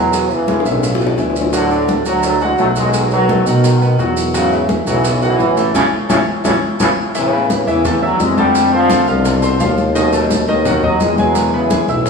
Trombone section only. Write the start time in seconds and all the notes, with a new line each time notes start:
Already playing: B2 F#3
0.31 C#3 E3
0.67 A2 C#3
1.54 A2 D3
2.07 D3 F#3
2.24 D3 F#3
2.42 E3 G#3
2.60 F#3 A3
2.77 D#3 G#3
3.13 D#3 F#3
3.47 B2 D#3
4.35 G#2 C#3
4.88 C#3 E3
5.22 C#3 E3
5.74 A2 C#3 E3
6.09 A2 C#3 E3
6.45 A2 C#3 E3
6.80 A2 C#3 E3
7.16 A2 C#3
7.69 C#3 E3
7.86 C#3 E3
8.04 D3 F#3
8.21 E3 G#3
8.38 D3 G3
8.73 D3 F3
9.09 B2 D3
9.96 F#2 B2
10.49 B2 D#3
10.66 B2 D#3
10.84 D#3 F#3
11.01 D#3 G#3
11.18 B2 F#3
11.54 C#3 E3
11.90 A2 C#3